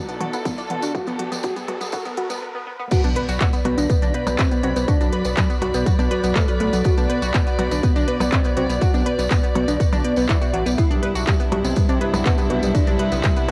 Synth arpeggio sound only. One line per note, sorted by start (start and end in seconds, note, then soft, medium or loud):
0.09 0.12 B3 loud
0.21 0.29 F#4 medium
0.34 0.38 B3 loud
0.45 0.49 B3 medium
0.58 0.61 D5 medium
0.70 0.73 B3 medium
0.83 0.86 F#4 medium
0.95 1.00 B3 medium
1.07 1.10 B3 loud
1.19 1.27 F#4 medium
1.32 1.37 B3 loud
1.44 1.49 B3 medium
1.56 1.59 B3 loud
1.68 1.76 F#4 medium
1.81 1.86 B3 loud
1.93 1.98 B3 medium
2.06 2.09 B3 loud
2.18 2.23 B3 medium
2.30 2.33 B3 loud
2.42 2.47 B3 medium
2.55 2.58 B3 loud
2.67 2.72 B3 medium
2.79 2.82 B3 loud
2.91 2.99 B3 medium
2.91 2.99 B4 medium
3.04 3.09 D4 loud
3.04 3.09 D5 medium
3.16 3.19 B4 loud
3.16 3.19 B5 medium
3.28 3.36 F#4 loud
3.28 3.36 F#5 medium
3.41 3.46 F#4 medium
3.41 3.46 F#5 medium
3.53 3.58 B3 medium
3.53 3.58 B4 medium
3.65 3.68 F#4 medium
3.65 3.68 F#5 medium
3.78 3.83 B3 medium
3.78 3.83 B4 medium
3.90 3.98 B3 medium
3.90 3.98 B4 medium
4.02 4.07 D4 loud
4.02 4.07 D5 medium
4.14 4.17 B4 loud
4.14 4.17 B5 medium
4.27 4.34 B3 medium
4.27 4.34 B4 medium
4.39 4.44 F#4 medium
4.39 4.44 F#5 medium
4.52 4.57 B3 medium
4.52 4.57 B4 medium
4.63 4.67 F#4 medium
4.63 4.67 F#5 medium
4.76 4.81 B3 medium
4.76 4.81 B4 medium
4.88 4.91 F#4 medium
4.88 4.91 F#5 medium
5.01 5.06 D4 loud
5.01 5.06 D5 medium
5.13 5.16 B4 loud
5.13 5.16 B5 medium
5.25 5.30 B3 medium
5.25 5.30 B4 medium
5.37 5.40 B3 medium
5.37 5.40 B4 medium
5.50 5.55 B3 medium
5.50 5.55 B4 medium
5.62 5.65 F#4 medium
5.62 5.65 F#5 medium
5.74 5.79 B3 medium
5.74 5.79 B4 medium
5.86 5.90 F#4 medium
5.86 5.90 F#5 medium
5.99 6.04 D4 loud
5.99 6.04 D5 medium
6.11 6.14 B4 loud
6.11 6.14 B5 medium
6.24 6.29 B3 medium
6.24 6.29 B4 medium
6.36 6.39 B3 medium
6.36 6.39 B4 medium
6.48 6.51 B4 medium
6.48 6.51 B5 medium
6.60 6.66 B3 medium
6.60 6.66 B4 medium
6.73 6.78 B3 medium
6.73 6.78 B4 medium
6.85 6.93 B3 medium
6.85 6.93 B4 medium
6.97 7.02 D4 loud
6.97 7.02 D5 medium
7.09 7.13 B4 loud
7.09 7.13 B5 medium
7.22 7.30 F#4 loud
7.22 7.30 F#5 medium
7.34 7.39 F#4 medium
7.34 7.39 F#5 medium
7.47 7.52 B3 medium
7.47 7.52 B4 medium
7.59 7.62 F#4 medium
7.59 7.62 F#5 medium
7.71 7.76 B3 medium
7.71 7.76 B4 medium
7.83 7.91 B3 medium
7.83 7.91 B4 medium
7.96 8.01 D4 loud
7.96 8.01 D5 medium
8.08 8.11 B4 loud
8.08 8.11 B5 medium
8.20 8.28 B3 medium
8.20 8.28 B4 medium
8.32 8.38 F#4 medium
8.32 8.38 F#5 medium
8.45 8.50 B3 medium
8.45 8.50 B4 medium
8.57 8.60 F#4 medium
8.57 8.60 F#5 medium
8.70 8.75 B3 medium
8.70 8.75 B4 medium
8.82 8.85 F#4 medium
8.82 8.85 F#5 medium
8.94 8.99 D4 loud
8.94 8.99 D5 medium
9.06 9.09 B4 loud
9.06 9.09 B5 medium
9.19 9.24 B3 medium
9.19 9.24 B4 medium
9.31 9.34 B3 medium
9.31 9.34 B4 medium
9.43 9.48 B3 medium
9.43 9.48 B4 medium
9.55 9.58 F#4 medium
9.55 9.58 F#5 medium
9.68 9.73 B3 medium
9.68 9.73 B4 medium
9.80 9.83 F#4 medium
9.80 9.83 F#5 medium
9.92 9.97 D4 loud
9.92 9.97 D5 medium
10.04 10.08 D4 medium
10.04 10.08 D5 medium
10.17 10.22 B3 loud
10.17 10.22 B4 medium
10.29 10.37 F#4 loud
10.29 10.37 F#5 medium
10.42 10.47 F#4 medium
10.42 10.47 F#5 medium
10.53 10.57 F#3 medium
10.53 10.57 F#4 medium
10.66 10.69 B3 medium
10.66 10.69 B4 medium
10.78 10.86 B3 medium
10.78 10.86 B4 medium
10.91 10.96 D4 loud
10.91 10.96 D5 medium
11.03 11.06 B4 loud
11.03 11.06 B5 medium
11.15 11.23 F#4 loud
11.15 11.23 F#5 medium
11.27 11.33 F#4 medium
11.27 11.33 F#5 medium
11.40 11.45 B3 medium
11.40 11.45 B4 medium
11.52 11.55 F#4 medium
11.52 11.55 F#5 medium
11.65 11.70 B3 medium
11.65 11.70 B4 medium
11.77 11.85 B3 medium
11.77 11.85 B4 medium
11.89 11.94 D4 loud
11.89 11.94 D5 medium
12.01 12.04 B4 loud
12.01 12.04 B5 medium
12.14 12.21 B3 medium
12.14 12.21 B4 medium
12.26 12.31 F#4 medium
12.26 12.31 F#5 medium
12.38 12.43 B3 medium
12.38 12.43 B4 medium
12.50 12.54 F#4 medium
12.50 12.53 F#5 medium
12.63 12.68 B3 medium
12.63 12.68 B4 medium
12.75 12.78 F#4 medium
12.75 12.78 F#5 medium
12.87 12.93 D4 loud
12.87 12.93 D5 medium
13.00 13.03 B4 loud
13.00 13.03 B5 medium
13.12 13.17 B3 medium
13.12 13.17 B4 medium
13.24 13.27 C4 medium
13.24 13.27 C5 medium
13.37 13.42 B3 medium
13.37 13.42 B4 medium